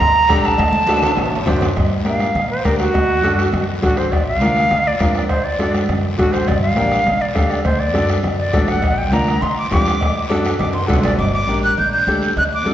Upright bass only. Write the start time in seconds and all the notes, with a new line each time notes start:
0.00 D2
0.30 A#1
0.59 D2
1.17 A1
1.47 F#2
1.77 G2
2.06 A#2
2.35 A#2
2.65 D2
2.95 D2
3.23 F#2
3.54 F#2
3.83 A1
4.13 A#1
4.41 D2
4.71 D2
5.01 F2
5.30 D2
5.59 F#2
5.89 F#2
6.19 A1
6.48 G1
6.77 A#1
7.06 A#1
7.36 D2
7.65 D2
7.94 F#2
8.24 F#2
8.54 A1
8.84 A#1
9.12 D2
9.42 D2
9.72 F2
10.02 D2
10.30 F#2
10.60 F#2
10.89 C2
11.04 A1
11.18 G1
11.48 A#1
11.78 A#1
12.07 D2
12.37 D2
12.66 F#2